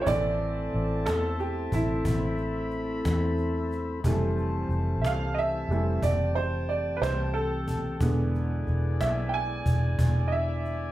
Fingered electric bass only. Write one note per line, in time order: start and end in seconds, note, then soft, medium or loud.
0.07 0.69 A1 medium
0.74 1.08 A1 medium
1.08 1.69 E2 medium
1.72 2.03 A1 medium
2.05 3.01 A1 medium
3.05 4.01 E2 medium
4.04 4.67 F1 medium
4.69 5.02 F1 medium
5.02 5.65 C2 medium
5.69 6.00 F1 medium
6.03 6.99 F1 medium
7.01 7.97 C2 medium
8.01 8.64 E1 medium
8.67 9.01 E1 medium
9.01 9.64 B1 medium
9.66 9.97 E1 medium
9.99 10.92 E1 medium